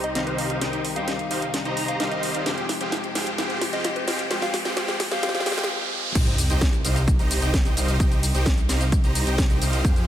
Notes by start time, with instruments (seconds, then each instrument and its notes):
Already playing: string section C2 C3 G3 D#4, grand piano D#3 G3 C4 G4, supersaw synth D#4 G4 C5 D#5 A#5, riser
0.04 soft synth lead D#5, closed hi-hat
0.15 grand piano D#3 G3 C4 G4, supersaw synth D#4 G4 C5 D#5 F5, soft synth lead D#5, snare, closed hi-hat
0.27 soft synth lead C5, closed hi-hat
0.38 soft synth lead D#5, open hi-hat
0.50 closed hi-hat
0.61 grand piano D#3 G3 C4 G4, supersaw synth D#4 G4 C5 D#5 G5, snare, closed hi-hat
0.73 closed hi-hat
0.85 open hi-hat
0.95 grand piano D#3 G3 C4 G4, supersaw synth D#4 G4 C5 D#5 G5, soft synth lead F5, closed hi-hat
1.08 snare, closed hi-hat
1.19 closed hi-hat
1.31 supersaw synth D#4 G4 C5 D#5 F5, open hi-hat
1.42 closed hi-hat
1.54 snare, closed hi-hat
1.65 supersaw synth D#4 G4 C5 D#5 A#5, closed hi-hat
1.77 soft synth lead A#5, open hi-hat
1.88 soft synth lead F5, closed hi-hat
1.99 grand piano D#3 G3 C4 G4, supersaw synth D#4 G4 C5 D#5 F5, soft synth lead F5, snare, closed hi-hat
2.11 soft synth lead D#5, closed hi-hat
2.23 open hi-hat
2.35 closed hi-hat
2.46 string section F2 G#3 G4, grand piano F3 G#3 C4 G4, supersaw synth G4 G#4 C5 F5 G5, snare, closed hi-hat
2.58 closed hi-hat
2.69 snare, open hi-hat
2.80 grand piano F3 G#3 C4 G4, supersaw synth G4 G#4 C5 F5 G5, closed hi-hat
2.92 snare, closed hi-hat
3.04 closed hi-hat
3.15 supersaw synth G4 G#4 C5 F5 G5, snare, open hi-hat
3.27 closed hi-hat
3.38 grand piano F3 G#3 C4 G4, supersaw synth G4 G#4 C5 F5 G5, snare, closed hi-hat
3.50 closed hi-hat
3.61 snare, open hi-hat
3.72 grand piano F3 G#3 C4 G4, supersaw synth G4 G#4 C5 F5 G5, soft synth lead D#5, closed hi-hat
3.84 soft synth lead D#5, snare, closed hi-hat
3.96 soft synth lead C5, closed hi-hat
4.08 supersaw synth G4 G#4 C5 F5 G5, soft synth lead D#5, snare, open hi-hat
4.19 closed hi-hat
4.30 grand piano F3 G#3 C4 G4, supersaw synth G4 G#4 C5 F5 G5, snare, closed hi-hat
4.42 soft synth lead F5, snare, closed hi-hat
4.54 snare, open hi-hat
4.64 grand piano F3 G#3 C4 G4, supersaw synth G4 G#4 C5 F5 G5, snare, closed hi-hat
4.76 grand piano F3 G#3 C4 G4, supersaw synth G4 G#4 C5 F5 G5, snare, closed hi-hat
4.88 snare, closed hi-hat
5.00 snare, open hi-hat
5.10 grand piano F3 G#3 C4 G4, supersaw synth G4 G#4 C5 F5 G5, soft synth lead F5, snare, closed hi-hat
5.22 grand piano F3 G#3 C4 G4, supersaw synth G4 G#4 C5 F5 G5, soft synth lead F5, snare, closed hi-hat
5.29 snare
5.35 soft synth lead F5, snare, closed hi-hat
5.40 snare
5.45 grand piano F3 G#3 C4 G4, supersaw synth G4 G#4 C5 F5 G5, soft synth lead F5, snare, open hi-hat
5.52 snare
5.58 snare, closed hi-hat
5.63 snare
6.15 detuned saw bass C2, string section C3 C4 D#4 G4, supersaw synth D#4 G4 C5 D#5 G5, kick, closed hi-hat, crash, sub drop, shaker
6.27 closed hi-hat, shaker
6.38 open hi-hat, ride, shaker
6.50 detuned saw bass C2, supersaw synth D#4 G4 C5 D#5 G5, closed hi-hat, shaker
6.61 kick, snare, closed hi-hat, shaker
6.73 closed hi-hat, shaker
6.85 detuned saw bass C2, supersaw synth D#4 G4 C5 D#5 F5, open hi-hat, ride, shaker
6.96 closed hi-hat, shaker
7.08 kick, closed hi-hat, shaker
7.19 detuned saw bass C2, supersaw synth D#4 G4 C5 D#5 A#5, closed hi-hat, shaker
7.31 open hi-hat, ride, shaker
7.42 detuned saw bass C2, supersaw synth D#4 G4 C5 D#5 G5, closed hi-hat, shaker
7.54 kick, snare, closed hi-hat, shaker
7.65 detuned saw bass C2, supersaw synth D#4 G4 C5 D#5 G5, closed hi-hat, shaker
7.77 detuned saw bass C2, supersaw synth D#4 G4 C5 D#5 F5, open hi-hat, ride, shaker
7.88 closed hi-hat, shaker
8.00 detuned saw bass C2, supersaw synth D#4 G4 C5 D#5 G5, kick, closed hi-hat, shaker
8.12 closed hi-hat, shaker
8.23 open hi-hat, ride, shaker
8.35 detuned saw bass C2, supersaw synth D#4 G4 C5 D#5 G5, closed hi-hat, shaker
8.46 kick, snare, closed hi-hat, shaker
8.58 closed hi-hat, shaker
8.69 detuned saw bass C2, supersaw synth D#4 G4 C5 D#5 F5, snare, open hi-hat, ride, shaker
8.81 closed hi-hat, shaker
8.92 kick, closed hi-hat, shaker
9.04 detuned saw bass C2, supersaw synth D#4 G4 C5 D#5 A#5, closed hi-hat, shaker
9.15 open hi-hat, ride, shaker
9.27 detuned saw bass C2, supersaw synth D#4 G4 C5 D#5 G5, closed hi-hat, shaker
9.38 kick, snare, closed hi-hat, shaker
9.50 detuned saw bass C2, supersaw synth D#4 G4 C5 D#5 G5, closed hi-hat, shaker
9.62 detuned saw bass C2, supersaw synth D#4 G4 C5 D#5 F5, open hi-hat, ride, shaker
9.73 closed hi-hat, shaker
9.85 detuned saw bass F2, string section F3 G#4, supersaw synth G4 G#4 C5 F5 G5, kick, closed hi-hat, shaker
9.96 closed hi-hat, shaker